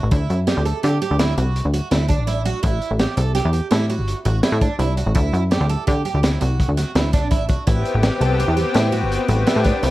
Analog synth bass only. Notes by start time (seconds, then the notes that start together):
0.03 A1
0.12 D2
0.30 F#2
0.57 D2
0.84 D3
1.11 D2
1.38 C2
1.65 D2
1.91 D2
2.18 A1
2.45 A#1
2.64 A1
2.91 A1
3.17 C2
3.45 E2
3.72 A2
3.98 G1
4.26 A1
4.52 A2
4.79 C2
5.06 A1
5.16 D2
5.33 F#2
5.61 D2
5.88 D3
6.14 D2
6.42 C2
6.69 D2
6.95 D2
7.23 A1
7.50 C2
7.68 A1
7.95 A1
8.21 C2
8.48 E2
8.75 A2
9.02 G1
9.29 A1
9.56 A2
9.83 C2